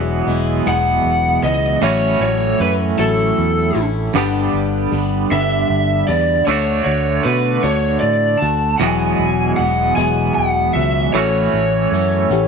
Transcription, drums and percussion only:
0.66 shaker medium
1.83 shaker loud
2.99 shaker loud
4.16 shaker medium
5.31 shaker loud
6.48 shaker loud
7.26 shaker soft
7.64 shaker loud
8.23 shaker soft
8.81 shaker medium
9.97 shaker loud
11.14 shaker loud
12.31 shaker loud

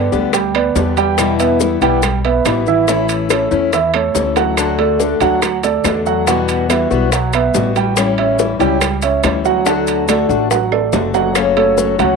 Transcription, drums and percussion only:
0.12 high bongo soft
0.12 maracas soft
0.33 high bongo medium
0.33 high timbale medium
0.33 maracas medium
0.54 high bongo soft
0.54 high timbale medium
0.54 claves medium
0.76 high bongo soft
0.76 low bongo medium
0.76 low timbale medium
0.76 maracas medium
0.97 high bongo soft
0.97 high timbale medium
0.97 maracas soft
1.18 high bongo medium
1.18 high timbale medium
1.18 claves medium
1.18 maracas medium
1.39 high timbale medium
1.39 maracas medium
1.60 high bongo medium
1.60 low timbale medium
1.60 maracas medium
1.81 high bongo soft
1.81 high timbale medium
1.81 maracas soft
2.02 high bongo medium
2.02 high timbale medium
2.02 claves medium
2.02 maracas medium
2.25 high bongo soft
2.25 high timbale medium
2.45 high bongo soft
2.45 low bongo medium
2.45 high timbale medium
2.45 low timbale medium
2.45 claves medium
2.45 maracas medium
2.67 high bongo soft
2.67 maracas soft
2.88 high bongo medium
2.88 high timbale medium
2.88 maracas medium
3.09 high timbale medium
3.09 maracas medium
3.30 high bongo medium
3.30 high timbale medium
3.30 low timbale medium
3.30 claves medium
3.30 maracas medium
3.51 high bongo soft
3.51 maracas soft
3.73 high bongo medium
3.73 high timbale medium
3.73 maracas medium
3.94 high bongo soft
3.94 high timbale medium
3.94 claves medium
4.15 high bongo soft
4.15 low bongo medium
4.15 low timbale medium
4.15 maracas medium
4.36 high bongo medium
4.36 high timbale medium
4.36 maracas soft
4.57 high bongo medium
4.57 high timbale medium
4.57 claves medium
4.57 maracas medium
4.79 high timbale medium
5.00 high bongo medium
5.00 low timbale medium
5.00 maracas medium
5.21 high bongo soft
5.21 high timbale medium
5.21 maracas soft
5.42 high bongo medium
5.42 high timbale medium
5.42 claves medium
5.42 maracas medium
5.63 high bongo soft
5.63 high timbale medium
5.63 maracas medium
5.84 high bongo soft
5.84 low bongo medium
5.84 high timbale medium
5.84 low timbale medium
5.84 claves medium
5.84 maracas medium
6.06 high bongo soft
6.06 maracas soft
6.27 high bongo medium
6.27 high timbale medium
6.27 maracas medium
6.49 high timbale medium
6.49 maracas medium
6.70 high bongo medium
6.70 high timbale medium
6.70 low timbale medium
6.70 claves medium
6.70 maracas medium
6.90 high bongo soft
6.90 maracas soft
7.12 high bongo medium
7.12 high timbale medium
7.12 maracas medium
7.33 high bongo soft
7.33 high timbale medium
7.33 claves medium
7.33 maracas medium
7.54 high bongo soft
7.54 low bongo medium
7.54 low timbale medium
7.54 maracas medium
7.76 high bongo soft
7.76 high timbale medium
7.76 maracas soft
7.96 high bongo medium
7.96 high timbale medium
7.96 claves medium
7.96 maracas medium
8.18 high timbale medium
8.39 high bongo medium
8.39 low timbale medium
8.39 maracas medium
8.60 high bongo soft
8.60 high timbale medium
8.60 maracas soft
8.81 high bongo medium
8.81 high timbale loud
8.81 claves medium
8.81 maracas medium
9.02 high bongo soft
9.02 high timbale medium
9.02 maracas medium
9.23 high bongo soft
9.23 low bongo medium
9.23 high timbale medium
9.23 low timbale medium
9.23 claves medium
9.23 maracas medium
9.45 high bongo soft
9.45 maracas soft
9.66 high bongo medium
9.66 high timbale medium
9.66 maracas medium
9.87 high timbale medium
9.87 maracas medium
10.08 high bongo medium
10.08 high timbale medium
10.08 low timbale medium
10.08 claves medium
10.08 maracas medium
10.30 high bongo soft
10.30 maracas soft
10.51 high bongo medium
10.51 high timbale medium
10.51 maracas medium
10.72 high bongo soft
10.72 high timbale medium
10.72 claves medium
10.93 high bongo soft
10.93 low bongo medium
10.93 low timbale medium
10.93 maracas medium
11.14 high bongo soft
11.14 low timbale medium
11.14 maracas soft
11.35 high bongo medium
11.35 high timbale medium
11.35 claves medium
11.35 maracas medium
11.57 high timbale medium
11.78 high bongo medium
11.78 maracas medium
11.99 high bongo soft
11.99 high timbale medium
11.99 maracas soft

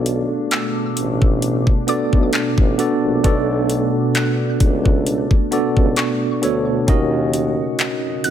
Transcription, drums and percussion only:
0.06 closed hi-hat medium
0.51 clap loud
0.51 closed hi-hat medium
0.97 closed hi-hat medium
1.22 kick medium
1.42 closed hi-hat medium
1.67 kick medium
1.88 closed hi-hat medium
2.13 kick medium
2.33 clap loud
2.33 closed hi-hat medium
2.58 kick loud
2.79 closed hi-hat medium
3.24 kick loud
3.24 closed hi-hat medium
3.70 closed hi-hat medium
4.15 clap loud
4.15 closed hi-hat medium
4.60 kick loud
4.60 closed hi-hat medium
4.86 kick loud
5.07 closed hi-hat medium
5.31 kick medium
5.52 closed hi-hat medium
5.77 kick medium
5.96 clap loud
5.96 closed hi-hat medium
6.43 closed hi-hat medium
6.88 kick loud
6.88 closed hi-hat medium
7.33 closed hi-hat medium
7.79 clap loud
7.79 closed hi-hat medium
8.24 closed hi-hat medium

